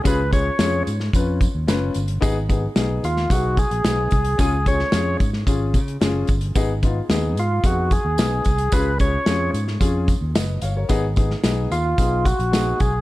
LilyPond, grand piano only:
\new Staff \with { instrumentName = "Grand piano" } { \time 4/4 \key gis \dorian \tempo 4 = 111 << { r1 | r1 | r1 | r1 |
r2. <b' dis''>8 <cis'' eis''>16 <ais' cis''>16~ | <ais' cis''>16 r2. r8. | } \\ { <cis' eis' gis'>16 r16 <cis' eis' gis'>16 r16 <cis' eis' gis'>8 r8 <cis' eis' b'>8 r8 <cis' eis' b'>8 r8 | <b dis' gis'>16 r16 <b dis' gis'>16 r16 <b dis' gis'>8 r8 <b dis' gis'>8 r8 <b dis' gis'>8 r8 | <cis' eis' gis'>16 r16 <cis' eis' gis'>16 r16 <cis' eis' gis'>8 r8 <cis' eis' gis'>8 r8 <cis' eis' gis'>8 r8 | <b dis' gis'>16 r16 <b dis' eis'>16 r16 <b dis' gis'>8 r8 <b dis' gis'>8 r8 <b dis' gis'>8 r8 |
<cis' eis' gis'>16 r16 <cis' eis' gis'>16 r16 <cis' eis' gis'>8 r8 <cis' eis' gis'>8 r4. | <b dis' gis'>16 r16 <b dis' gis'>16 r16 <b dis' gis'>8 r8 <b dis' gis'>8 r8 <b dis' gis'>8 r8 | } >> }